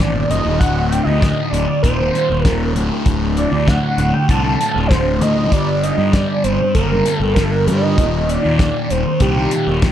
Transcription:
0.00 fingered electric bass A1, distorted electric guitar D#2 A#2 D#3, analog synth lead D5, snare, closed hi-hat
0.14 fingered electric bass G1
0.30 fingered electric bass F#1, distorted electric guitar D#2 A#2 D#3, analog synth lead D#5, closed hi-hat
0.45 fingered electric bass D#1, distorted electric guitar A#2 D#3
0.60 fingered electric bass D1, distorted electric guitar D2 A2 D3, analog synth lead F#5, kick, closed hi-hat
0.90 analog synth lead G5, closed hi-hat
1.03 fingered electric bass D2, analog synth lead D#5
1.08 distorted electric guitar A2 D3
1.21 distorted electric guitar D2 A2 D3, kick, snare, closed hi-hat
1.50 fingered electric bass D1, analog synth lead D5
1.54 closed hi-hat
1.68 muted distorted electric guitar stroke
1.83 fingered electric bass D#1, distorted electric guitar D#2 A#2 D#3, analog synth lead C5, kick, closed hi-hat
1.99 distorted electric guitar A#2 D#3
2.15 distorted electric guitar D#2 A#2 D#3, closed hi-hat
2.30 fingered electric bass D#1, muted distorted electric guitar stroke
2.45 distorted electric guitar D#2 A#2 D#3, analog synth lead A#4, kick, snare, closed hi-hat
2.76 fingered electric bass D1, distorted electric guitar D2 A2 D3, closed hi-hat
2.90 distorted electric guitar A2 D3
3.05 fingered electric bass D1, distorted electric guitar D2 A2 D3, kick, closed hi-hat
3.37 analog synth lead D5, closed hi-hat
3.52 fingered electric bass D2, distorted electric guitar A2 D3
3.67 distorted electric guitar D2 A2 D3, analog synth lead F#5, kick, snare, closed hi-hat
3.98 fingered electric bass D1, closed hi-hat
4.13 analog synth lead G5, muted distorted electric guitar stroke
4.28 fingered electric bass C2, distorted electric guitar D2 A2 D3, analog synth lead A5, kick, closed hi-hat
4.43 distorted electric guitar A2 D3
4.59 distorted electric guitar D2 A2 D3, closed hi-hat
4.74 fingered electric bass D1, muted distorted electric guitar stroke
4.87 distorted electric guitar D2 A2, analog synth lead C5, kick
4.91 distorted electric guitar D3, snare, closed hi-hat
5.19 distorted electric guitar D2 A2 D3, fingered electric bass D2, analog synth lead D#5, closed hi-hat
5.36 distorted electric guitar A2 D3
5.51 fingered electric bass G1, distorted electric guitar G2 D3 G3, analog synth lead D5, kick, closed hi-hat
5.83 analog synth lead D#5, closed hi-hat
5.97 fingered electric bass G2, distorted electric guitar D3 G3
6.13 distorted electric guitar G2 D3 G3, analog synth lead D5, kick, snare, closed hi-hat
6.43 fingered electric bass G1, analog synth lead C5, closed hi-hat
6.61 muted distorted electric guitar stroke
6.75 fingered electric bass F#1, distorted electric guitar G2 D3 G3, analog synth lead A#4, kick, closed hi-hat
6.92 distorted electric guitar D3 G3
7.06 distorted electric guitar G2 D3 G3, closed hi-hat
7.16 fingered electric bass G1, analog synth lead A4
7.22 muted distorted electric guitar stroke
7.35 distorted electric guitar G2 D3, analog synth lead A#4, kick, snare, closed hi-hat
7.39 distorted electric guitar G3
7.43 analog synth lead A4
7.51 analog synth lead A#4
7.67 fingered electric bass G2, distorted electric guitar G2 D3 G3, analog synth lead D#5, closed hi-hat
7.82 distorted electric guitar D3 G3
7.98 fingered electric bass D#1, distorted electric guitar D#2 A#2 D#3, kick, closed hi-hat
8.29 analog synth lead D5, closed hi-hat
8.43 fingered electric bass D#2, distorted electric guitar A#2 D#3
8.59 distorted electric guitar D#2 A#2 D#3, kick, snare, closed hi-hat
8.90 fingered electric bass D#1, analog synth lead C5, closed hi-hat
9.05 muted distorted electric guitar stroke
9.20 fingered electric bass C2, distorted electric guitar D#2 A#2 D#3, analog synth lead G4, kick, closed hi-hat
9.36 distorted electric guitar A#2 D#3
9.51 distorted electric guitar D#2 A#2 D#3, closed hi-hat
9.67 fingered electric bass D#1, muted distorted electric guitar stroke
9.82 distorted electric guitar D#2 A#2 D#3, kick, snare, closed hi-hat

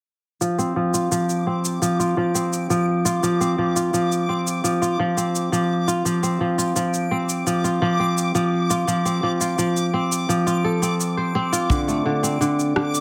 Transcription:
0.41 kora F3, synth texture D6, cabasa
0.58 kora C4, cabasa
0.76 kora F3
0.94 kora F4, cabasa
1.12 kora F3, cabasa
1.29 cabasa
1.47 kora C4
1.65 cabasa
1.82 kora F3, cabasa
2.00 kora F4, cabasa
2.17 kora F3
2.35 kora C4, cabasa
2.53 cabasa
2.70 kora F3, cabasa
3.05 kora F4, cabasa
3.23 kora F3, cabasa
3.41 kora C4, cabasa
3.58 kora F3
3.76 kora F4, cabasa
3.94 kora F3, cabasa
4.12 cabasa
4.29 kora C4
4.47 cabasa
4.64 kora F3, cabasa
4.82 kora F4, cabasa
4.99 kora F3
5.17 kora C4, cabasa
5.35 cabasa
5.52 kora F3, cabasa
5.88 kora F4, cabasa
6.05 kora F3, cabasa
6.23 kora C4, cabasa
6.41 kora F3
6.58 kora F4, cabasa
6.76 kora F3, cabasa
6.94 cabasa
7.11 kora C4
7.29 cabasa
7.47 kora F3, cabasa
7.64 kora F4, cabasa
7.82 kora F3
8.00 kora C4
8.18 cabasa
8.35 kora F3, cabasa
8.70 kora F4, cabasa
8.88 kora F3, cabasa
9.05 kora C4, cabasa
9.23 kora F3
9.41 kora F4, cabasa
9.58 kora F3, cabasa
9.77 cabasa
9.94 kora C4
10.12 cabasa
10.29 kora F3, cabasa
10.47 kora F4, cabasa
10.64 kora A4
10.82 kora C4, cabasa
11.00 cabasa
11.17 kora C5
11.35 kora C4
11.53 kora F4, cabasa
11.70 kora D3, kick, cabasa
11.88 kora A3, cabasa
12.06 kora D3
12.23 kora C4, cabasa
12.41 kora D3, cabasa
12.59 cabasa
12.76 kora D3, cross-stick
12.94 cabasa

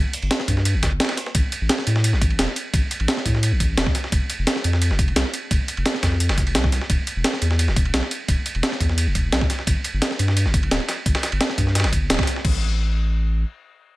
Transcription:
0.13 closed hi-hat, ride
0.22 sub bass G1, ride
0.31 snare, closed hi-hat, ride
0.40 snare
0.48 sub bass G2, kick, closed hi-hat, ride
0.57 snare
0.65 closed hi-hat, ride
0.74 sub bass G1
0.83 kick, snare, closed hi-hat, ride
1.00 snare, closed hi-hat, ride
1.05 snare, ride
1.09 snare, ride
1.17 snare, closed hi-hat, ride
1.26 snare
1.35 sub bass A1, kick, closed hi-hat, ride
1.52 closed hi-hat, ride
1.61 sub bass A1
1.69 snare, closed hi-hat, ride
1.78 snare
1.87 sub bass A2, closed hi-hat, ride
1.96 snare
2.04 closed hi-hat, ride
2.13 sub bass A1, snare
2.21 kick, closed hi-hat, ride
2.30 ride
2.39 sub bass E1, snare, closed hi-hat, ride
2.48 snare
2.56 closed hi-hat, ride
2.73 sub bass A1, kick, closed hi-hat, ride
2.91 closed hi-hat, ride
3.00 sub bass A1, ride
3.08 snare, closed hi-hat, ride
3.17 snare
3.25 sub bass A2, kick, closed hi-hat, ride
3.35 snare
3.43 closed hi-hat, ride
3.52 sub bass A1
3.60 kick, closed hi-hat, ride
3.77 sub bass E1, snare, closed hi-hat, ride
3.87 kick, snare
3.95 snare, closed hi-hat, ride
4.04 snare
4.12 sub bass F1, kick, closed hi-hat, ride
4.30 closed hi-hat, ride
4.39 sub bass F1
4.47 snare, closed hi-hat, ride
4.56 snare
4.64 sub bass F2, closed hi-hat, ride
4.73 snare
4.82 closed hi-hat, ride
4.90 sub bass F1, snare
4.99 kick, closed hi-hat, ride
5.08 ride
5.16 sub bass C2, snare, closed hi-hat, ride
5.25 snare
5.34 closed hi-hat, ride
5.51 sub bass F1, kick, closed hi-hat, ride
5.68 closed hi-hat, ride
5.77 sub bass F1, ride
5.86 snare, closed hi-hat, ride
5.95 snare
6.03 sub bass F2, kick, snare, closed hi-hat, ride
6.12 snare
6.20 closed hi-hat, ride
6.29 sub bass F1, snare, ride
6.38 kick, snare, closed hi-hat
6.47 ride
6.55 sub bass C2, snare, closed hi-hat, ride
6.64 kick, snare
6.72 snare, closed hi-hat, ride
6.81 snare
6.90 sub bass E1, kick, closed hi-hat, ride
7.07 closed hi-hat, ride
7.16 sub bass E1
7.24 snare, closed hi-hat, ride
7.33 snare
7.42 sub bass E2, closed hi-hat, ride
7.51 snare
7.59 closed hi-hat, ride
7.68 sub bass E1, snare
7.76 kick, closed hi-hat, ride
7.85 ride
7.94 sub bass B1, snare, closed hi-hat, ride
8.03 snare
8.11 closed hi-hat, ride
8.28 sub bass E1, kick, closed hi-hat, ride
8.46 closed hi-hat, ride
8.55 sub bass E1, ride
8.63 snare, closed hi-hat, ride
8.72 snare
8.80 sub bass E2, kick, closed hi-hat, ride
8.89 snare
8.98 closed hi-hat, ride
9.07 sub bass E1
9.15 kick, closed hi-hat, ride
9.32 sub bass B1, snare, closed hi-hat, ride
9.41 kick, snare
9.50 snare, closed hi-hat, ride
9.59 snare
9.67 sub bass G1, kick, closed hi-hat, ride
9.84 closed hi-hat, ride
9.93 sub bass G1
10.02 snare, closed hi-hat, ride
10.11 snare
10.19 sub bass G2, closed hi-hat, ride
10.28 snare
10.37 closed hi-hat, ride
10.45 sub bass G1, snare
10.54 kick, closed hi-hat, ride
10.63 ride
10.71 sub bass D1, snare, closed hi-hat, ride
10.80 snare
10.89 snare, closed hi-hat, ride
11.06 sub bass G1, kick, closed hi-hat, ride
11.15 snare, ride
11.23 snare, closed hi-hat, ride
11.32 sub bass G1, ride
11.41 snare, closed hi-hat, ride
11.50 snare
11.58 sub bass G2, kick, closed hi-hat, ride
11.67 snare
11.75 snare, closed hi-hat, ride
11.80 snare, ride
11.84 sub bass G1, snare, ride
11.93 kick, closed hi-hat, ride
12.10 sub bass D1, snare, closed hi-hat, ride
12.14 snare, ride
12.19 kick, snare, ride
12.23 snare, ride
12.27 snare, closed hi-hat, ride
12.36 snare
12.45 sub bass A1, kick, crash

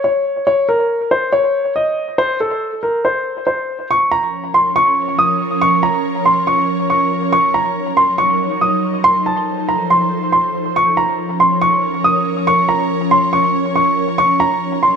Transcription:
0.04 grand piano C#5
0.47 grand piano C#5
0.69 grand piano A#4
1.11 grand piano C5
1.32 grand piano C#5
1.76 grand piano D#5
2.18 grand piano C5
2.40 grand piano A4
2.83 grand piano A#4
3.05 grand piano C5
3.47 grand piano C5
3.90 ambient pad F3 C#4 A#4 C#5, grand piano C#6
4.11 grand piano A#5
4.54 grand piano C6
4.76 grand piano C#6
5.19 grand piano D#6
5.62 grand piano C#6
5.83 grand piano A#5
6.25 grand piano C6
6.47 grand piano C#6
6.90 grand piano C#6
7.33 ambient pad F#3 D#4, grand piano C#6
7.54 grand piano A#5
7.97 grand piano C6
8.18 grand piano C#6
8.61 grand piano D#6
9.04 ambient pad F3 A4 C5, grand piano C6
9.26 grand piano A5
9.69 grand piano A#5
9.90 grand piano C6
10.32 grand piano C6
10.76 ambient pad C#4 A#4 C#5, grand piano C#6
10.97 grand piano A#5
11.40 grand piano C6
11.62 grand piano C#6
12.04 grand piano D#6
12.47 grand piano C#6
12.69 grand piano A#5
13.11 grand piano C6
13.33 grand piano C#6
13.76 grand piano C#6
14.18 ambient pad F#3 D#4 A#4, grand piano C#6
14.40 grand piano A#5
14.83 grand piano C6

